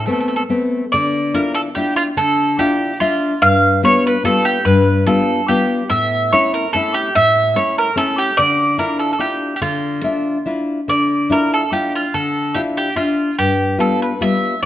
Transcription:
0.06 A3 B3 C4 A4
0.12 A4
0.20 A4
0.28 A4
0.36 A4
0.49 A3 B3 C4
0.92 D3 D5
1.34 D4 E4 F4 A#4
1.55 A4
1.75 D4 E4 F4 G4
1.96 F4
2.17 D3 A4
2.59 D4 E4 F4 G4
3.00 D4 F4 E5
3.42 G2 F5
3.83 G3 B3 F4 C#5
4.07 B4
4.24 G3 B3 F4 A4
4.45 G4
4.65 G2 B4
5.06 G3 B3 F4 A4
5.48 G3 B3 F4 G4
5.90 A2 E5
6.32 A3 C#4 E4 C#5
6.54 A#4
6.73 A3 C#4 E4 A4
6.94 G4
7.15 A2 E5
7.56 A3 C#4 E4 C#5
7.78 A#4
7.96 A3 C#4 E4 A4
8.18 G4
8.37 D3 D5
8.78 D4 E4 F4 A#4
8.99 A4
9.13 A4
9.19 D4 E4 F4 G4
9.56 G4
9.61 D3 F4
10.04 D4 F4 E5
10.46 D4 E4 F4
10.88 D3 D5
11.30 D4 E4 F4 A#4
11.54 A4
11.72 D4 E4 F4 G4
11.95 F4
12.14 D3 A4
12.55 D4 E4 F4 G4
12.77 G4
12.96 D4 F4 E5
13.38 G2 G4
13.78 G3 B3 F4 A4
14.02 B4
14.21 G3 B3 F4 E5

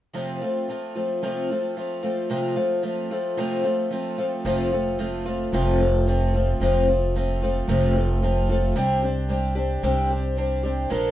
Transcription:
0.14 F2 C3 F3 A3 C4 F4
0.41 F3 A3 C4 F4
0.68 F3 A3 C4 F4
0.95 F3 A3 C4 F4
1.23 F2 C3 F3 A3 C4 F4
1.50 F3 A3 C4 F4
1.77 F3 A3 C4 F4
2.03 F3 A3 C4 F4
2.29 F2 C3 F3 A3 C4 F4
2.56 F3 A3 C4 F4
2.83 F3 A3 C4 F4
3.11 F3 A3 C4 F4
3.37 F2 C3 F3 A3 C4 F4
3.64 F3 A3 C4 F4
3.90 F3 A3 C4 F4
4.18 F3 A3 C4 F4
4.45 F1 F2 C3 F3 A3 C4 F4
4.72 F3 A3 C4 F4
4.98 F3 A3 C4 F4
5.26 F3 A3 C4 F4
5.52 F1 F2 C3 F3 A3 C4 F4
5.79 F3 A3 C4 F4
6.07 F3 A3 C4 F4
6.34 F3 A3 C4 F4
6.60 F1 F2 C3 F3 A3 C4 F4
6.88 F3 A3 C4 F4
7.15 F3 A3 C4 F4
7.42 F3 A3 C4 F4
7.67 F1 F2 C3 F3 A3 C4 F4
7.96 F3 A3 C4 F4
8.22 F3 A3 C4 F4
8.49 F3 A3 C4 F4
8.76 C2 C3 G3 C4 D4 G4
9.02 C4 D4 G4
9.29 G3 C4 D4 G4
9.55 C4 D4 G4
9.83 C2 C3 G3 C4 D4 G4
10.10 C4 D4 G4
10.37 G3 C4 D4 G4
10.63 C4 D4 G4
10.90 A#1 A#2 F3 A#3 D4 A4

